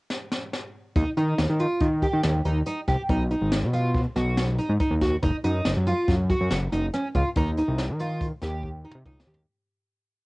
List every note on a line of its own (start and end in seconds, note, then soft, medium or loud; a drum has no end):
0.10 snare medium
0.32 snare medium
0.53 snare medium
0.96 1.04 D#2 loud
0.96 1.09 D#4 medium
0.96 kick medium
0.96 closed hi-hat medium
1.17 1.34 D#3 medium
1.17 1.43 D#4 medium
1.17 closed hi-hat medium
1.38 1.47 D#2 medium
1.38 snare medium
1.38 closed hi-hat medium
1.50 1.67 D#3 medium
1.59 1.86 F4 medium
1.59 closed hi-hat soft
1.80 2.07 D#3 medium
1.80 kick medium
1.80 closed hi-hat medium
2.02 2.29 G4 medium
2.02 kick medium
2.02 closed hi-hat medium
2.13 2.22 D#3 medium
2.23 2.41 D#2 loud
2.23 snare loud
2.23 closed hi-hat medium
2.45 2.62 D#2 medium
2.45 2.58 D#4 medium
2.45 closed hi-hat soft
2.66 2.79 D#4 medium
2.66 closed hi-hat medium
2.88 2.96 C2 medium
2.88 3.01 G4 medium
2.88 kick medium
2.88 snare soft
2.88 closed hi-hat soft
3.09 3.35 B1 medium
3.09 3.22 D#4 medium
3.09 kick medium
3.09 closed hi-hat medium
3.30 3.57 D#4 medium
3.30 closed hi-hat medium
3.41 3.64 G#1 medium
3.52 snare medium
3.52 closed hi-hat medium
3.63 4.06 B2 medium
3.73 3.99 F4 medium
3.73 closed hi-hat soft
3.94 kick medium
3.94 snare soft
3.94 closed hi-hat medium
4.16 4.59 B1 medium
4.16 4.42 F#4 medium
4.16 snare soft
4.16 closed hi-hat soft
4.37 snare medium
4.37 closed hi-hat medium
4.59 4.72 D#4 medium
4.59 closed hi-hat soft
4.69 4.78 G#2 medium
4.80 4.93 D#4 medium
4.80 kick medium
4.80 closed hi-hat medium
4.91 5.17 D#2 medium
5.01 5.15 F#4 medium
5.01 kick medium
5.01 snare soft
5.01 closed hi-hat medium
5.22 5.31 F#1 loud
5.22 5.36 D#4 medium
5.22 kick medium
5.22 closed hi-hat medium
5.44 5.61 F#2 medium
5.44 5.70 D#4 medium
5.44 closed hi-hat medium
5.65 5.74 F#1 medium
5.65 snare medium
5.65 closed hi-hat medium
5.77 5.94 F#2 medium
5.87 6.13 F4 medium
5.87 closed hi-hat medium
6.08 6.34 F#2 medium
6.08 kick loud
6.08 snare soft
6.08 closed hi-hat medium
6.30 6.56 F#4 medium
6.30 kick medium
6.30 closed hi-hat medium
6.41 6.49 F#2 medium
6.51 6.68 F#1 loud
6.51 snare medium
6.51 closed hi-hat medium
6.72 6.89 F#1 medium
6.72 6.85 D#4 medium
6.72 closed hi-hat medium
6.93 7.07 C#4 medium
6.93 snare soft
6.93 closed hi-hat medium
7.15 7.23 C#2 medium
7.15 7.28 F4 medium
7.15 kick medium
7.15 closed hi-hat soft
7.36 7.62 D#2 loud
7.36 7.50 D#4 medium
7.36 kick medium
7.36 closed hi-hat medium
7.57 7.84 D#4 medium
7.57 closed hi-hat medium
7.68 7.91 C2 medium
7.78 snare medium
7.78 closed hi-hat medium
7.89 8.32 D#3 medium
8.00 8.26 F4 medium
8.00 closed hi-hat soft
8.21 kick medium
8.21 closed hi-hat medium
8.42 8.85 D#2 medium
8.42 8.68 G4 medium
8.42 snare soft
8.42 closed hi-hat medium
8.63 kick medium
8.85 8.98 D#4 medium
8.91 9.04 C3 medium
8.91 mid tom medium
9.06 9.25 C#2 medium
9.06 9.19 D#4 medium
9.06 kick medium
9.06 mid tom medium
9.20 snare medium
9.27 9.46 D#2 medium
9.27 9.40 G4 medium
9.34 floor tom medium